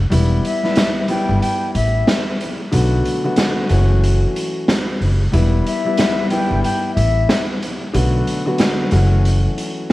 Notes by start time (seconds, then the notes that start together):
0.10 E1 G3 B3 E4, closed hi-hat
0.44 E5, closed hi-hat
0.63 G3 B3 E4, snare
0.76 snare, closed hi-hat
1.08 G3 B3 E4 G5, closed hi-hat
1.29 G1
1.41 G5, closed hi-hat
1.74 A1 E5, closed hi-hat
2.07 snare, closed hi-hat
2.41 closed hi-hat
2.72 B1 D3 F#3 A3 B3 F#4, closed hi-hat
3.05 closed hi-hat
3.24 D3 F#3 A3 B3 F#4
3.36 snare, closed hi-hat
3.69 F#1 E3 F#3 A3 C#4 F#4, closed hi-hat
4.04 closed hi-hat
4.36 closed hi-hat
4.68 snare, closed hi-hat
5.01 F#1, open hi-hat
5.32 E1 G3 B3 E4, closed hi-hat
5.66 E5, closed hi-hat
5.85 G3 B3 E4
5.97 snare, closed hi-hat
6.29 G3 B3 E4 G5, closed hi-hat
6.51 G1
6.63 G5, closed hi-hat
6.94 A1 E5, closed hi-hat
7.29 snare, closed hi-hat
7.62 closed hi-hat
7.93 B1 D3 F#3 A3 B3 F#4, closed hi-hat
8.27 closed hi-hat
8.46 D3 F#3 A3 B3 F#4
8.58 snare, closed hi-hat
8.91 F#1 E3 F#3 A3 C#4 F#4, closed hi-hat
9.25 closed hi-hat
9.58 closed hi-hat